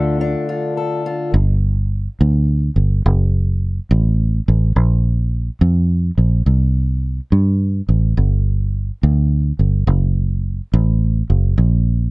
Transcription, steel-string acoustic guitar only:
Already playing: D3 A3 D4 F4 A4
0.21 D4
0.49 F4
0.77 A4
1.06 F4

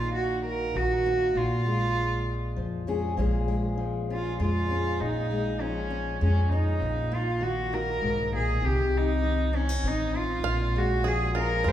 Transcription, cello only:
Already playing: F4
0.15 F#4
0.46 A#4
0.76 F#4
1.37 F4
4.13 F4
4.41 F4
5.01 D#4
5.61 C#4
6.23 C#4
6.53 D#4
7.15 F4
7.43 F#4
7.74 A#4
8.36 G#4
8.65 G4
8.98 D#4
9.56 C#4
9.88 D#4
10.18 F4
10.78 F#4
11.08 G#4
11.39 A#4
11.68 C5

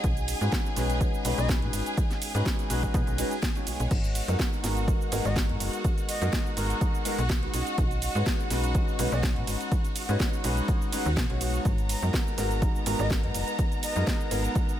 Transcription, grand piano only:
Already playing: G#3 C#4 D#4 F#4 D#5
0.41 G#3 C#4 D#4 F#4 B4
0.76 G#3 C#4 D#4 F#4 B4
1.25 G#3 C#4 D#4 F#4 B4
1.38 G#3 C#4 D#4 F#4 B4
1.62 G#3 C#4 D#4 F#4 B4
2.34 G#3 C#4 D#4 F#4 B4
2.70 G#3 C#4 D#4 F#4 B4
3.18 G#3 C#4 D#4 F#4 B4
3.55 G#3 C#4 D#4 F#4 C#5
3.66 G#3 B3 D#4 F#4 C#5
4.28 G#3 B3 D#4 F#4 A#4
4.63 G#3 B3 D#4 F#4 A#4
4.87 G#3 B3 D#4
5.11 G#3 B3 D#4 F#4 A#4
5.25 G#3 B3 D#4 F#4 A#4
5.49 G#3 B3 D#4 F#4 A#4
6.21 G#3 B3 D#4 F#4 A#4
6.57 G#3 B3 D#4 F#4 A#4
7.05 G#3 B3 D#4 F#4 A#4
7.42 G#3 B3 D#4 F#4 B4
7.53 G#3 C#4 D#4 F#4 D#5
8.15 G#3 C#4 D#4 F#4 B4
8.50 G#3 C#4 D#4 F#4 B4
8.75 G#3 C#4 D#4 F#4
8.98 G#3 C#4 D#4 F#4 B4
9.11 G#3 C#4 D#4 F#4 B4
9.35 G#3 C#4 D#4 F#4 B4
10.09 G#3 C#4 D#4 F#4 B4
10.44 G#3 C#4 D#4 F#4 B4
10.92 G#3 C#4 D#4 F#4 B4
11.30 G#3 C#4 D#4 F#4 C#5
11.40 G#3 B3 D#4 F#4 C#5
12.02 G#3 B3 D#4 F#4 A#4
12.37 G#3 B3 D#4 F#4 A#4
12.62 G#3 B3 D#4 A#4
12.86 G#3 B3 D#4 F#4 A#4
12.99 G#3 B3 D#4 F#4 A#4
13.23 G#3 B3 D#4 F#4 A#4
13.96 G#3 B3 D#4 F#4 A#4
14.31 G#3 B3 D#4 F#4 A#4

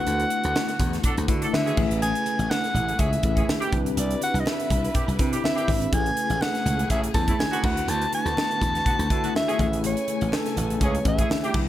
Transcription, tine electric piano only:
Already playing: A3 D4 E4 F#4 B4
1.28 A3 D4 E4 F#4 B4
1.77 A3 C#4 E4 G#4 B4
3.24 A3 C#4 E4 G#4 B4
3.72 C4 D4 E4 G4 B4
5.20 C4 D4 E4 G4 B4
5.68 C4 D4 E4 G4 B4
5.93 A3 C#4 E4 G#4 A4
6.00 B4
7.14 A3 C#4 E4 G#4 B4
7.64 A3 D4 E4 F#4 B4
9.10 A3 D4 E4 F#4 B4
9.59 A3 C#4 E4 G#4 B4
11.05 A3 C#4 E4 G#4 B4
11.54 C4 D4 E4 G4 B4

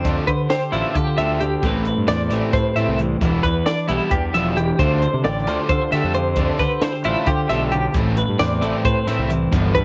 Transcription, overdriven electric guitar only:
0.05 D3 A3 D4 F4
0.28 muted overdriven electric guitar stroke
0.50 muted overdriven electric guitar stroke
0.73 D3 A3 D4 F4
0.96 muted overdriven electric guitar stroke
1.18 D3 A3 D4 F4
1.40 muted overdriven electric guitar stroke
1.63 E3 A3 C4 E4
1.87 muted overdriven electric guitar stroke
2.08 muted overdriven electric guitar stroke
2.31 E3 A3 C4 E4
2.54 muted overdriven electric guitar stroke
2.76 E3 A3 C4 E4
2.99 muted overdriven electric guitar stroke
3.21 E3 G3 B3 E4
3.44 muted overdriven electric guitar stroke
3.67 muted overdriven electric guitar stroke
3.88 E3 G3 B3 E4
4.12 muted overdriven electric guitar stroke
4.34 E3 G3 B3 E4
4.57 muted overdriven electric guitar stroke
4.79 D3 A3 D4 F4
5.02 muted overdriven electric guitar stroke
5.24 muted overdriven electric guitar stroke
5.48 D3 A3 D4 F4
5.70 muted overdriven electric guitar stroke
5.93 D3 A3 D4 F4
6.15 muted overdriven electric guitar stroke
6.38 D3 A3 D4 F4
6.60 muted overdriven electric guitar stroke
6.82 muted overdriven electric guitar stroke
7.04 D3 A3 D4 F4
7.27 muted overdriven electric guitar stroke
7.50 D3 A3 D4 F4
7.73 muted overdriven electric guitar stroke
7.95 E3 A3 C4 E4
8.18 muted overdriven electric guitar stroke
8.40 muted overdriven electric guitar stroke
8.62 E3 A3 C4 E4
8.85 muted overdriven electric guitar stroke
9.08 E3 A3 C4 E4
9.30 muted overdriven electric guitar stroke
9.52 D3 F3 B3 D4
9.74 muted overdriven electric guitar stroke

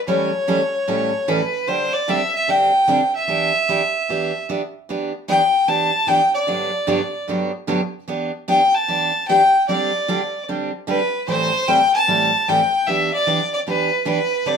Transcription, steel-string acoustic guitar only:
0.07 A2 E3 G3 C#4 E4 A4
0.48 A2 E3 G3 C#4 E4 A4
0.88 A2 E3 G3 C#4 E4 A4
1.28 A2 E3 G3 C#4 E4 A4
1.67 D3 G3 C4 D4 G4
2.08 D3 G3 C4 D4 G4
2.48 D3 G3 C4 D4 G4
2.88 D3 G3 C4 D4 G4
3.28 E3 B3 D4 G4
3.69 E3 B3 D4 G4
4.09 E3 B3 D4 G4
4.49 E3 B3 D4 G4
4.89 E3 B3 D4 G4
5.28 E3 B3 D4 G4
5.68 E3 B3 D4 G4
6.07 E3 B3 D4 G4
6.47 G2 D3 F#3 B3 D4 G4
6.87 G2 D3 F#3 B3 D4 G4
7.28 G2 D3 F#3 B3 D4 G4
7.67 G2 D3 F#3 B3 D4 G4
8.08 E3 B3 D4 G4
8.48 E3 B3 D4 G4
8.88 E3 B3 D4 G4
9.29 E3 B3 D4 G4
9.68 D3 G3 C4 D4 G4
10.08 D3 G3 C4 D4 G4
10.49 D3 G3 C4 D4 G4
10.87 D3 G3 C4 D4 G4
11.28 A2 E3 G3 C4 E4 A4
11.68 A2 E3 G3 C4 E4 A4
12.08 A2 E3 G3 C4 E4 A4
12.48 A2 E3 G3 C4 E4 A4
12.87 E3 B3 D4 G4
13.27 E3 B3 D4 G4
13.67 E3 B3 D4 G4
14.05 E3 B3 D4 G4
14.46 D3 G3 C4 D4 G4

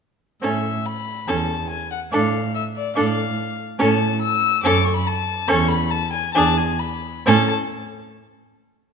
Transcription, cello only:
0.42 A2
1.27 E2
2.12 A2
2.97 A2
3.80 A2
4.64 F#2
5.49 E2
6.35 E2
7.27 A2

